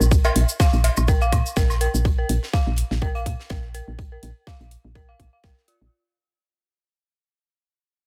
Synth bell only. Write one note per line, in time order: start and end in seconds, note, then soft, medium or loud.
0.25 0.32 A#4 medium
0.60 0.65 F5 medium
1.08 1.14 A#4 loud
1.22 1.28 F5 loud
1.57 1.62 A#4 medium
1.81 1.86 A#4 medium
2.18 2.25 A#4 medium
2.54 2.59 F5 medium
3.02 3.07 A#4 medium
3.15 3.22 F5 loud
3.50 3.56 A#4 medium
3.74 3.80 A#4 medium
4.12 4.19 A#4 medium
4.47 4.53 F5 medium
4.95 5.01 A#4 medium
5.09 5.16 F5 medium
5.33 5.36 F5 medium
5.44 5.49 A#4 medium
5.68 5.73 F4 medium